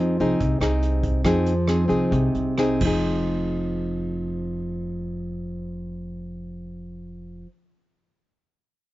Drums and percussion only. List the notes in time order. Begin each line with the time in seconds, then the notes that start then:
0.20 closed hi-hat
0.40 kick, closed hi-hat
0.61 cross-stick, closed hi-hat
0.82 closed hi-hat
1.03 kick, closed hi-hat
1.25 kick, cross-stick, closed hi-hat
1.46 closed hi-hat
1.68 cross-stick, closed hi-hat
1.90 closed hi-hat
2.12 kick, closed hi-hat
2.35 closed hi-hat
2.58 cross-stick, closed hi-hat
2.81 kick, crash